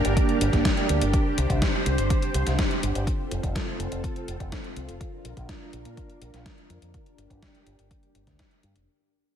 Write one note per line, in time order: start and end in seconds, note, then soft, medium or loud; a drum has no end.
0.00 0.14 A#3 medium
0.00 0.14 D4 medium
0.00 3.03 D4 medium
0.00 0.14 G4 medium
0.00 3.03 G4 medium
0.00 1.10 A#4 medium
0.00 0.14 D5 medium
0.05 0.14 G1 medium
0.05 closed hi-hat soft
0.17 0.38 A#3 medium
0.17 0.38 D4 medium
0.17 0.38 G4 medium
0.17 0.38 D5 medium
0.17 kick loud
0.17 closed hi-hat medium
0.29 closed hi-hat soft
0.41 0.51 G1 medium
0.41 closed hi-hat medium
0.53 0.67 A#3 medium
0.53 0.67 D4 medium
0.53 0.67 G4 medium
0.53 0.67 D5 medium
0.53 kick medium
0.53 snare soft
0.53 closed hi-hat soft
0.65 kick loud
0.65 snare loud
0.65 closed hi-hat medium
0.77 0.87 A#3 medium
0.77 0.87 D4 medium
0.77 0.87 G4 medium
0.77 0.87 D5 loud
0.77 closed hi-hat soft
0.89 0.99 D2 medium
0.89 1.04 A#3 medium
0.89 1.04 D4 medium
0.89 1.04 G4 medium
0.89 1.04 D5 loud
0.89 closed hi-hat medium
1.01 1.11 G1 medium
1.01 closed hi-hat soft
1.13 3.05 C5 medium
1.13 kick loud
1.13 closed hi-hat medium
1.38 1.47 C2 medium
1.38 closed hi-hat medium
1.50 1.59 C2 medium
1.50 kick medium
1.50 closed hi-hat soft
1.62 kick loud
1.62 snare loud
1.62 closed hi-hat medium
1.86 1.96 C2 medium
1.86 closed hi-hat medium
1.98 2.08 G1 medium
1.98 closed hi-hat soft
2.10 kick loud
2.10 closed hi-hat medium
2.22 closed hi-hat soft
2.34 2.44 C2 medium
2.34 closed hi-hat medium
2.47 2.56 C2 medium
2.47 snare soft
2.47 closed hi-hat soft
2.59 kick loud
2.59 snare loud
2.59 closed hi-hat medium
2.71 closed hi-hat soft
2.83 2.92 G1 medium
2.83 closed hi-hat medium
2.95 3.05 G1 medium
2.95 closed hi-hat soft
3.07 4.99 C4 medium
3.07 6.90 F4 medium
3.07 4.99 A4 medium
3.07 kick loud
3.07 closed hi-hat medium
3.31 3.41 F1 medium
3.31 closed hi-hat medium
3.43 3.53 F1 medium
3.43 kick medium
3.43 closed hi-hat soft
3.55 kick loud
3.55 snare loud
3.55 closed hi-hat medium
3.80 3.89 F1 medium
3.80 closed hi-hat medium
3.92 4.01 F1 medium
3.92 closed hi-hat soft
4.04 kick loud
4.04 closed hi-hat medium
4.16 closed hi-hat soft
4.28 4.37 F1 medium
4.28 closed hi-hat medium
4.40 4.50 F1 medium
4.40 kick medium
4.40 closed hi-hat soft
4.52 kick loud
4.52 snare loud
4.52 closed hi-hat medium
4.64 closed hi-hat soft
4.76 4.86 C2 medium
4.76 closed hi-hat medium
4.88 4.98 F1 medium
4.88 closed hi-hat soft
5.01 6.92 D4 medium
5.01 8.84 A#4 medium
5.01 kick loud
5.01 closed hi-hat medium
5.25 5.34 A#1 medium
5.25 closed hi-hat medium
5.37 5.46 A#1 medium
5.37 kick medium
5.37 closed hi-hat soft
5.49 kick loud
5.49 snare loud
5.49 closed hi-hat medium
5.73 5.83 A#1 medium
5.73 closed hi-hat medium
5.85 5.95 A#2 medium
5.85 closed hi-hat soft
5.97 kick loud
5.97 closed hi-hat medium
6.10 closed hi-hat soft
6.22 6.31 A#1 medium
6.22 closed hi-hat medium
6.34 6.43 A#1 medium
6.34 snare soft
6.34 closed hi-hat soft
6.46 kick loud
6.46 snare loud
6.46 closed hi-hat medium
6.58 closed hi-hat soft
6.70 6.79 F2 medium
6.70 closed hi-hat medium
6.82 6.91 F2 medium
6.82 closed hi-hat soft
6.94 8.86 D4 medium
6.94 8.86 G4 medium
6.94 kick loud
6.94 closed hi-hat medium
7.06 closed hi-hat soft
7.18 7.28 G1 medium
7.18 closed hi-hat medium
7.30 7.40 G1 medium
7.30 kick medium
7.30 closed hi-hat soft
7.42 kick loud
7.42 snare loud
7.42 closed hi-hat medium
7.55 closed hi-hat soft
7.67 7.76 G1 medium
7.67 closed hi-hat medium
7.79 7.88 G1 medium
7.79 closed hi-hat soft
7.91 kick loud
7.91 closed hi-hat medium
8.03 closed hi-hat soft
8.15 8.25 G1 medium
8.15 closed hi-hat medium
8.27 8.37 D2 medium
8.27 kick medium
8.27 snare soft
8.27 closed hi-hat soft
8.39 kick loud
8.39 snare loud
8.39 closed hi-hat medium
8.51 closed hi-hat soft
8.63 8.73 G2 medium
8.63 closed hi-hat medium
8.76 closed hi-hat soft